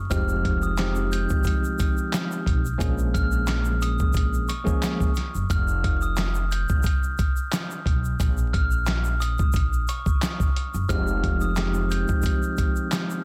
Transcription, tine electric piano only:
0.10 F3 G#3 C4 D#4 G4
0.78 F3 G#3 C4 D#4 G4
2.78 F3 G#3 A#3 C#4 G#4
4.64 F3 G#3 A#3 C#4 G#4
10.89 F3 G#3 C4 D#4 G4
11.56 F3 G#3 C4 D#4 G4

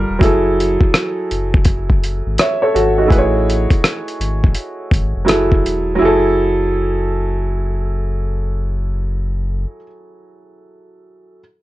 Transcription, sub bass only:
0.10 E1
0.22 F#1
1.31 F#1
2.26 G#1
2.75 G#1
3.11 A1
4.20 G#1
4.92 G#1
5.16 F#1
5.29 F#1
5.65 E1
6.01 F#1

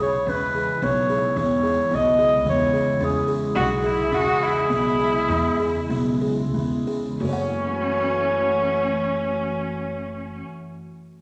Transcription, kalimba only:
0.00 G#4
0.28 C#4
0.55 G#4
0.83 B3
1.10 G#4
1.37 B3
1.63 G#4
1.91 B3
2.19 G#4
2.46 B3
2.74 G#4
3.01 C#4
3.28 G#4
3.56 C#4
3.84 G#4
4.12 C#4
4.41 G#4
4.69 B3
4.99 G#4
5.29 B3
5.60 G#4
5.90 B3
6.21 G#4
6.54 B3
6.87 G#4
7.21 F#4
7.25 A4
7.29 C#5 F#5

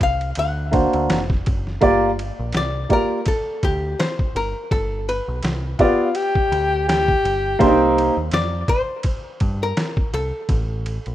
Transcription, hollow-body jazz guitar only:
0.03 F5
0.39 F#5
2.57 D5
2.93 A#4
3.28 A4
3.64 G4
3.99 C5
4.37 A#4
4.72 A4
5.09 B4
8.34 D5
8.69 C5
9.63 A#4
10.14 A4

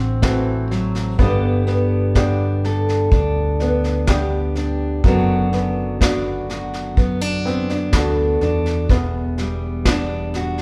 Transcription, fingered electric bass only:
Already playing: A1
1.19 G1
3.12 D2
5.04 F#1
6.97 F#2
7.93 D2
8.41 E2
8.89 E1

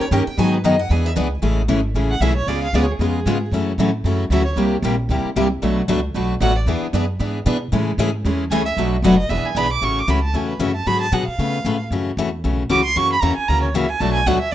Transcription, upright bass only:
0.11 G2
0.27 muted upright bass stroke
0.38 G#2
0.64 F#2
0.90 E2
1.16 C#2
1.42 A1
1.69 G#1
1.94 A1
2.20 B1
2.47 C#2
2.73 D2
2.99 F2
3.26 G#2
3.51 F#2
3.78 A2
4.04 F#2
4.30 D2
4.56 C2
4.82 A#1
5.09 D2
5.25 muted upright bass stroke
5.36 C2
5.63 B1
5.88 C#2
6.14 B1
6.41 A1
6.66 E2
6.82 muted upright bass stroke
6.93 F#2
7.20 G#2
7.46 B2
7.72 A2
7.98 G#2
8.25 E2
8.51 C#2
8.77 B1
9.02 F#1
9.29 E1
9.44 muted upright bass stroke
9.55 B1
9.81 A1
10.08 C#2
10.34 E2
10.59 F#2
10.87 G#2
11.12 B2
11.28 muted upright bass stroke
11.38 C#3
11.65 A2
11.91 F#2
12.17 E2
12.44 B1
12.70 C#2
12.96 F#2
13.22 E2
13.38 muted upright bass stroke
13.49 D2
13.74 C#2
14.00 B1
14.26 D2

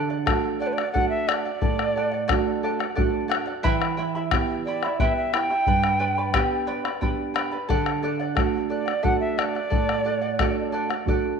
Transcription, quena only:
0.60 D5
0.67 B4
0.73 D5
0.92 F#5
1.09 E5
1.28 D5
4.66 D5
5.00 E5
5.17 E5
5.34 G5
8.71 D5
9.03 F#5
9.20 E5
9.39 D5

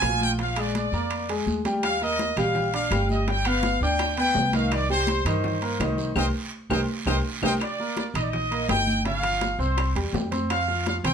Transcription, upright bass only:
0.02 A#1
0.92 F2
1.46 D#2
2.37 A#1
2.91 G1
3.81 D2
4.35 C2
5.25 G2
5.79 C2
6.16 C2
6.70 C2
7.06 C2
7.42 C2
8.14 A#1
8.68 G1
9.59 C2
9.95 E2
10.13 F2
11.04 C2

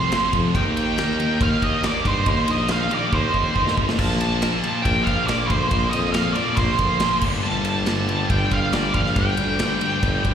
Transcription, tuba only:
0.33 F2
0.55 D#2
1.41 D#2
1.62 D#2
2.05 G2
2.27 D#2
2.49 A#1
2.92 A#1
3.12 D#2
3.34 F1
3.56 G1
3.77 A1
3.99 A#1
4.85 A#1
5.07 A#1
5.50 D2
5.71 A#1
5.93 F2
6.36 F2
6.58 A#1
6.79 D2
7.22 G1
7.44 G1
8.30 G1
8.51 G1
8.94 A#1
9.16 G1
9.39 D2
9.82 D2
10.03 G1
10.25 D2

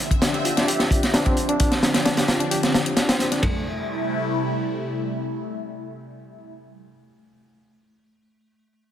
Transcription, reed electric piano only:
0.22 D4
0.34 G4
0.45 F4
0.57 D4
0.68 G4
0.80 C4
1.14 D4
1.26 C4
1.49 D4
1.60 D4
2.05 D4
2.17 G4
2.28 F4
2.40 D4
2.51 G4
2.63 C4
2.97 D4
3.09 C4
3.32 D4
3.43 A3

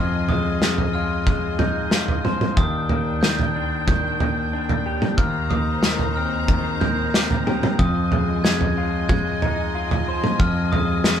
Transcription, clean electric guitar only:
Already playing: F3 G#3 D#4 F4 C5
0.29 G#3
0.62 G#3
0.95 F4
1.28 G#3
1.60 D#4
1.92 F4
2.25 C5
2.58 D#3
2.90 A#3
3.23 D#3
3.56 D4
3.87 D#3
4.20 A#3
4.53 D4
4.86 G4
5.19 D#3
5.51 A#3
5.84 D#3
6.17 C4
6.50 D#3
6.81 A#3
7.14 C4
7.46 G4
7.79 F3
8.11 G#3
8.44 G#3
8.78 F4
9.10 G#3
9.42 D#4
9.75 F4
10.08 C5
10.40 F3
10.73 G#3
11.05 G#3

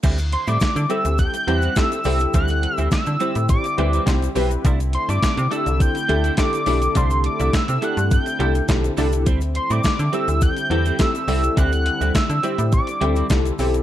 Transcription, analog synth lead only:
0.33 C6
0.48 D6
0.91 E6
1.19 G6
1.58 F#6
1.77 E6
2.35 F#6
2.76 E6
2.92 E6
3.50 D6
4.94 C6
5.10 D6
5.52 E6
5.81 G6
6.38 D6
6.97 C6
7.26 D6
7.55 E6
7.84 F#6
8.13 G6
9.56 C6
9.72 D6
10.14 E6
10.43 G6
11.00 E6
11.58 F#6
12.15 E6
12.73 D6

